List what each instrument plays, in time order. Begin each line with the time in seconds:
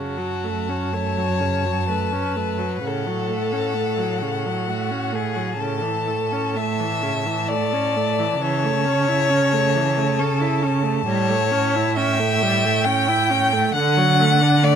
Already playing: cello F#2, viola C#3, violin F#4 A5
0.18 viola F#3
0.44 viola A3
0.69 viola C#4
0.93 viola A3, violin C#5
1.17 viola F#3
1.41 viola C#3
1.65 viola F#3
1.89 viola A3, violin B4
2.12 viola C#4
2.36 viola A3
2.58 viola F#3
2.82 cello A2, viola C#3, violin F#5
2.87 violin A4
3.07 viola F#3
3.29 viola A3
3.53 viola C#4
3.75 viola A3
3.97 viola F#3
4.22 viola C#3
4.46 viola F#3
4.68 viola A3, violin F#4
4.91 viola C#4
5.13 viola A3, violin G#4
5.36 viola F#3
5.58 viola C#3, violin A4 A5
5.82 viola E3
6.07 viola A3
6.32 viola C#4
6.56 viola A3, violin E5
6.80 viola E3
7.03 viola C#3
7.26 viola E3
7.48 viola A3, violin D5
7.73 viola C#4
7.96 viola A3
8.19 viola E3
8.39 cello C#3, viola E3, violin C#5
8.64 viola A3
8.85 viola C#4
9.08 viola E4
9.30 viola C#4
9.53 viola A3
9.76 viola E3
9.97 viola A3
10.19 viola C#4, violin A4
10.41 viola E4
10.63 viola C#4
10.83 viola A3
11.07 cello A2, viola G3, violin C#5
11.28 viola A3
11.52 viola C#4
11.76 viola E4
11.96 viola C#4, violin E5 G5
12.19 viola A3
12.42 viola G3
12.65 viola A3
12.85 viola C#4, violin G5
13.08 viola E4
13.30 viola C#4
13.53 viola A3
13.74 cello D3, viola D3, violin F#5
13.97 viola F#3
14.20 viola A3
14.41 viola D4
14.63 viola A3, violin D5